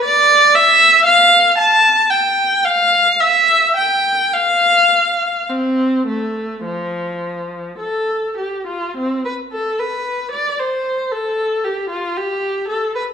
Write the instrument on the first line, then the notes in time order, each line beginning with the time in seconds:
viola
0.04 D5
0.55 E5
1.05 F5
1.58 A5
2.10 G5
2.65 F5
3.20 E5
3.76 G5
4.33 F5
5.50 C4
6.07 A3
6.65 F3
7.79 A4
8.38 G4
8.67 F4
8.97 C4
9.25 B4
9.52 A4
9.79 B4
10.32 D5
10.59 C5
11.12 A4
11.64 G4
11.90 F4
12.17 G4
12.69 A4
12.95 B4